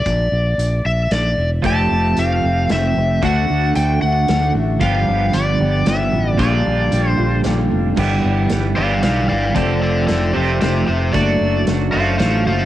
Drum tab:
CC |------|------|------|------|
HH |x-x-x-|x-x-x-|x-x-x-|x-x-x-|
SD |----o-|----o-|----o-|----o-|
BD |o-----|o-----|o-----|o-----|

CC |------|x-----|------|------|
HH |x-x-x-|--x-x-|x-x-x-|x-x-x-|
SD |----o-|--o-o-|--o-o-|--o-o-|
BD |o-----|o-----|o-----|o-----|